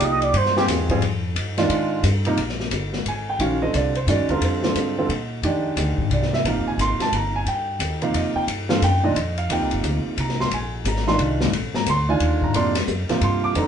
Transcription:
Already playing: F3 A#3 D#4 G4
0.00 C2, hi-hat pedal, ride
0.05 D#5
0.22 D5, ride
0.33 G2, ride
0.37 C5
0.46 snare
0.57 C4 F4 G4 G#4, snare
0.67 E2, snare, hi-hat pedal, ride
0.89 G3 C4 F4 G#4, kick, ride
1.01 F2, ride
1.35 G2, ride
1.57 D#3 G#3 D4 F4, snare, ride
1.69 G#2, ride
2.03 G2, hi-hat pedal, ride
2.25 C3 F3 A#3 D#4, ride
2.37 A#1, ride
2.49 snare
2.60 snare
2.71 G1, hi-hat pedal, ride
2.93 snare
3.05 G#1 G#5, ride
3.30 G5
3.39 A#1 D#3 G#3 C#4 F#4 F5, ride
3.62 D3 G3 C4 F4 D#5
3.74 C2 D5, hi-hat pedal, ride
3.95 C5, ride
4.07 G2 D#3 G#3 C#4 F#4 D5, hi-hat pedal, ride
4.18 F2
4.29 D2 D3 G3 C4 F4 A#4, ride
4.40 F2 C5, ride
4.63 D3 G3 C4 F4, snare
4.75 G#2, hi-hat pedal, ride
4.98 D3 G3 C4 F4
5.09 A#2, ride
5.42 F2 D#3 G#3 D4 G4, ride
5.76 D2, hi-hat pedal, ride
5.98 muted upright bass stroke, kick
6.10 C2 D5, ride
6.22 snare
6.33 E5, snare
6.44 A#1 C3 F3 A#3 D#4, ride
6.48 F5
6.55 G1
6.66 D#1 G#5
6.78 G#1 C6, hi-hat pedal, ride
6.99 A5, muted upright bass stroke, snare, ride
7.12 G1 A#5, ride
7.36 G#5
7.45 G2 G5, ride
7.79 D#2, hi-hat pedal, ride
8.02 C3 F3 A#3 D#4 F5, ride
8.14 F2 D#5, ride
8.35 G5, muted upright bass stroke
8.47 G2, ride
8.69 D3 G3 C4 F4 F5, snare
8.81 F#2 G5, hi-hat pedal, ride
9.03 A#2 D#3 G#3 D4 D#5
9.15 F2, ride
9.38 F5, ride
9.49 D#2 C3 F3 A#3 D#4 G5, ride
9.60 C2
9.71 G1, ride
9.83 D2, hi-hat pedal, ride
10.05 muted upright bass stroke
10.17 C2 A#5, ride
10.29 snare
10.40 C6, snare
10.51 A#1 G#5, ride
10.84 G#1 A#5, hi-hat pedal, ride
10.96 snare
11.07 D#3 G#3 D4 F4 C6, snare
11.19 C2, ride
11.40 snare
11.52 A#1, ride
11.74 A#5, muted upright bass stroke, snare
11.86 D2 C6, hi-hat pedal, ride
12.09 D#3 G#3 D4 F4 G#5
12.20 D#2, ride
12.42 A#5, kick
12.53 F2 C3 F3 A#3 D4 C6, ride
12.75 snare, ride
12.87 F#2, hi-hat pedal
13.09 C3 F3 A#3 F4, muted upright bass stroke, snare, ride
13.21 G2 C6, ride
13.44 D6
13.55 F2 D3 G3 C4 D#4 A#5, ride

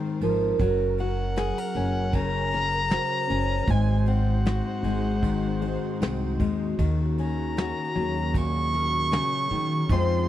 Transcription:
Already playing: G#2 D#3 G#3 C4 D#4 A#4 C5
0.21 G#1 F3 A#4, ride
0.59 F#1 F#3 C#4 A#4, kick, ride
0.98 F#4 F#5, ride
1.36 G#4, snare, ride
1.58 A#4
1.75 F#1 C#4, ride
2.13 C#3 A#5, kick, ride
2.51 A#4, ride
2.90 F#4 C5, snare, ride
3.29 F#1 C#4, ride
3.68 G#1 G#2 G#3 D#4 F#4 C5 G#5, kick, ride
4.06 C4 F#5, ride
4.45 F#4, snare, ride
4.83 G#1 G#3, ride
5.22 D#3, kick, ride
5.61 C5, ride
6.01 C2 C4, snare, ride
6.40 D#2 G#3, kick, ride
6.78 D#2 C#3 D#3 A#3, kick, ride
7.18 C#4 A#5, ride
7.57 F#4, snare, ride
7.95 D#2 F#3, ride
8.34 A#2 C#6, kick, ride
8.73 A#4, ride
9.12 C#3, snare, ride
9.50 D#3, ride
9.89 F2 F3 G#3 C4 D#4 F4 C5 C6, kick, ride
9.93 C5

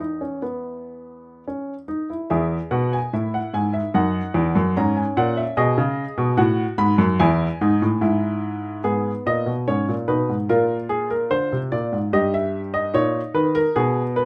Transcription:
Already playing: E2 E5
0.00 D#4
0.21 C#4
0.42 B3
1.48 C#4
1.88 D#4
2.10 E4
2.30 E2 G#4 E5
2.71 B2 F#5
2.93 G#5
3.13 A2 E4 E5
3.34 F#5
3.54 G#2 G#5
3.74 E5
3.94 F#2 D#4 F#5
4.34 E2
4.55 F#2
4.77 G#2 C#4 A#5
4.97 G#5
5.17 A#2 F#5
5.37 E5
5.57 B2 G#4 D#5
5.78 C#3
6.18 B2
6.37 A2 F#4 F#5
6.78 G#2 B5
6.98 F#2
7.19 E2 E4 G#5
7.61 G#2 D#4
7.82 A2
8.01 G#2 E4
8.84 G#2 B3 G#4
9.26 A#2 D#5
9.46 B2
9.68 G#2 C#4 C#5
9.88 A#2
10.08 B2 D#4 B4
10.29 G#2
10.49 A#2 F4 A#4
10.89 G#4
11.10 A#4
11.31 D3 C5
11.52 C3
11.72 A#2 D5
11.92 G#2
12.13 G2 G4 D#5
12.34 E5
12.74 D#5
12.94 A#2 D#4 C#5
13.34 D#3 B4
13.55 A#4
13.76 B2 B3 G#4
14.16 B4

